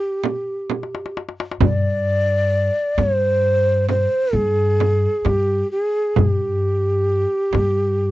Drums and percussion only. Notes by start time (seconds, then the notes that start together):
0.24 darbuka tek, frame drum
0.70 darbuka tek, frame drum
0.83 darbuka ka
0.95 darbuka tek
1.06 darbuka ka
1.17 darbuka tek
1.29 darbuka ka
1.40 darbuka tek
1.51 darbuka ka
1.61 frame drum, darbuka dum
2.54 darbuka ka
2.98 darbuka tek, frame drum
3.43 darbuka ka
3.89 darbuka tek, frame drum
4.35 darbuka ka
4.80 darbuka tek, frame drum
5.25 darbuka tek, frame drum
6.16 frame drum, darbuka dum
7.09 darbuka ka
7.53 darbuka tek, frame drum
8.02 darbuka ka